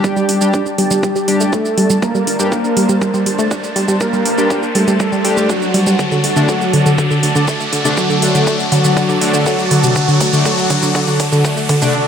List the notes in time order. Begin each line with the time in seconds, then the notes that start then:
Already playing: G3 D4 G4 D5 A5, riser
0.04 G1 G3 G4, kick, shaker
0.16 G3, shaker
0.29 G1 D4, open hi-hat
0.41 G2 G3 D4 G4, shaker
0.54 G1 D4, kick, shaker
0.66 D4, shaker
0.78 G1 G3 G4, open hi-hat
0.91 G1 G3, shaker
1.03 G1 G3, kick, shaker
1.16 G3, shaker
1.28 G1 G3 D4 G4, open hi-hat
1.40 G1 A3, shaker
1.53 G1 A3 D4 A4, kick, shaker
1.65 D4, shaker
1.78 G1 G3, open hi-hat
1.90 G1 G3, shaker
2.02 G1 G3 A#3 A#4 C5, kick, shaker
2.15 G3, shaker
2.27 G1 D4, open hi-hat
2.40 G2 G3 D4 G4, shaker
2.52 G1 A#3 D4 A#4, kick, shaker
2.64 D4, shaker
2.77 G1 G3, open hi-hat
2.89 G1 G3, shaker
3.01 G1 G3, kick, shaker
3.14 G3, shaker
3.26 G1 G3, open hi-hat
3.39 G1 A3, shaker
3.51 G1 D4, kick, shaker
3.64 D4, shaker
3.76 G1 G3, open hi-hat
3.88 G1 G3, shaker
4.01 G1 G3 A#3 A#4, kick, shaker
4.13 G3, shaker
4.25 G1 D4, open hi-hat
4.38 G2 G3 D4 G4, shaker
4.50 G1 D4, kick, shaker
4.63 D4, shaker
4.75 G1 G3 A3 A4, open hi-hat
4.88 G1 G3, shaker
5.00 G1 G3, kick, shaker
5.12 G3, shaker
5.25 G1 G3 D4 G4, open hi-hat
5.37 G2 A3, shaker
5.49 G1 F#3 D4 F#4, kick, shaker
5.62 D4, shaker
5.74 D2 G3, open hi-hat
5.87 G2 G3, shaker
5.99 D2 D3 F#3 F#4 A4 D5, kick, shaker
6.11 D3, shaker
6.24 D2 A3, open hi-hat
6.36 D1 D3 A3 D4, shaker
6.49 D2 F#3 A3 F#4, kick, shaker
6.61 A3, shaker
6.73 D2 D3, open hi-hat
6.86 D2 D3, shaker
6.98 D2 D3, kick, shaker
7.11 D3, shaker
7.23 D2 D3, open hi-hat
7.35 D2 D3, shaker
7.48 D2 A3, kick, shaker
7.60 A3, shaker
7.73 D2 D3, open hi-hat
7.85 D2 C3 D3 A3 D4, shaker
7.97 D2 D3 F#3 F#4, kick, shaker
8.10 D3, shaker
8.22 D2 A3, open hi-hat
8.35 D1 D3 A3 D4, shaker
8.47 D2 A3, kick, shaker
8.60 A3, shaker
8.72 D2 D3 F#3 F#4, open hi-hat
8.84 D2 D3, shaker
8.97 D2 D3, kick, shaker
9.09 D3, shaker
9.21 D2 D3 A3 D4, open hi-hat
9.34 D2 D3, shaker
9.46 D2 F#3 A3 F#4, kick, shaker
9.59 A3, shaker
9.71 D2 D3, open hi-hat
9.83 D2 C3, shaker
9.96 D2 D3 F#3 F#4, kick, shaker
10.08 D3, shaker
10.21 D2 A3, kick, open hi-hat
10.33 D1 D3 A3 D4, shaker
10.45 D2 F#3 A3 F#4, kick, shaker
10.58 A3, shaker
10.70 D2 D3, kick, open hi-hat
10.83 D2 D3, shaker
10.95 D2 D3, kick, shaker
11.07 D3, shaker
11.20 D2 D3, kick, open hi-hat
11.32 D2 D3, shaker
11.44 D2 A3, kick, shaker
11.57 A3, shaker
11.69 D2 D3, kick, open hi-hat
11.82 D2 C3 D3 A3 D4, shaker